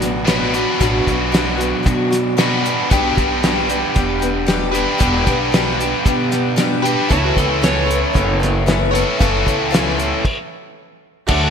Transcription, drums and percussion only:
0.02 snare soft
0.02 closed hi-hat medium
0.28 snare medium
0.28 closed hi-hat medium
0.54 closed hi-hat medium
0.81 kick loud
0.81 closed hi-hat medium
1.07 kick medium
1.07 closed hi-hat medium
1.34 snare medium
1.34 closed hi-hat medium
1.61 closed hi-hat medium
1.86 kick medium
1.86 closed hi-hat medium
2.13 snare soft
2.13 closed hi-hat medium
2.38 snare medium
2.38 closed hi-hat medium
2.66 closed hi-hat medium
2.91 kick loud
2.91 closed hi-hat medium
3.18 kick medium
3.18 closed hi-hat medium
3.44 snare loud
3.44 closed hi-hat medium
3.69 closed hi-hat medium
3.96 kick loud
3.96 closed hi-hat medium
4.22 closed hi-hat medium
4.48 snare medium
4.48 closed hi-hat medium
4.75 closed hi-hat medium
5.00 kick loud
5.00 closed hi-hat medium
5.27 kick medium
5.27 closed hi-hat medium
5.54 snare loud
5.54 closed hi-hat medium
5.81 closed hi-hat medium
6.06 kick medium
6.06 closed hi-hat medium
6.32 snare soft
6.32 closed hi-hat medium
6.58 snare medium
6.58 closed hi-hat medium
6.85 closed hi-hat medium
7.11 kick loud
7.11 closed hi-hat medium
7.37 kick medium
7.37 closed hi-hat medium
7.64 snare medium
7.64 closed hi-hat medium
7.91 closed hi-hat medium
8.15 kick loud
8.15 closed hi-hat medium
8.43 snare soft
8.43 closed hi-hat medium
8.68 snare medium
8.68 closed hi-hat medium
8.95 closed hi-hat medium
9.21 kick loud
9.21 closed hi-hat medium
9.47 kick medium
9.47 closed hi-hat medium
9.74 snare loud
9.74 closed hi-hat medium
9.99 closed hi-hat soft
10.25 kick medium
10.25 crash medium
11.28 kick loud
11.28 crash loud

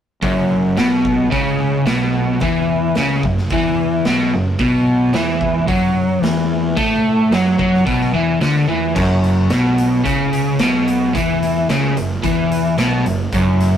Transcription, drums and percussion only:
0.22 kick loud
0.22 open hi-hat soft
0.77 snare loud
0.77 open hi-hat soft
1.05 kick medium
1.32 kick loud
1.32 open hi-hat medium
1.86 snare loud
1.86 open hi-hat soft
2.40 kick medium
2.40 open hi-hat soft
2.95 snare loud
2.95 open hi-hat soft
3.23 kick medium
3.38 snare soft
3.50 kick loud
3.50 open hi-hat soft
4.05 snare loud
4.05 open hi-hat soft
4.59 kick loud
4.59 open hi-hat soft
5.13 snare loud
5.13 open hi-hat soft
5.41 kick medium
5.68 kick loud
5.68 open hi-hat medium
6.23 snare loud
6.23 open hi-hat soft
6.77 kick loud
6.77 open hi-hat medium
7.32 snare loud
7.32 open hi-hat soft
7.59 kick medium
7.74 snare soft
7.86 kick loud
7.86 open hi-hat soft
8.01 snare soft
8.41 snare loud
8.41 open hi-hat soft
8.96 kick loud
8.96 crash loud
9.24 closed hi-hat medium
9.50 snare medium
9.50 closed hi-hat medium
9.78 closed hi-hat medium
10.05 kick loud
10.05 closed hi-hat medium
10.33 closed hi-hat medium
10.59 snare loud
10.59 closed hi-hat medium
10.88 closed hi-hat medium
11.15 kick medium
11.15 closed hi-hat medium
11.43 snare soft
11.43 closed hi-hat medium
11.69 snare loud
11.69 closed hi-hat medium
11.97 closed hi-hat medium
12.23 kick loud
12.23 closed hi-hat medium
12.52 closed hi-hat medium
12.78 snare loud
12.78 closed hi-hat medium
13.06 closed hi-hat medium
13.32 kick loud
13.32 closed hi-hat medium
13.60 snare soft
13.60 closed hi-hat medium

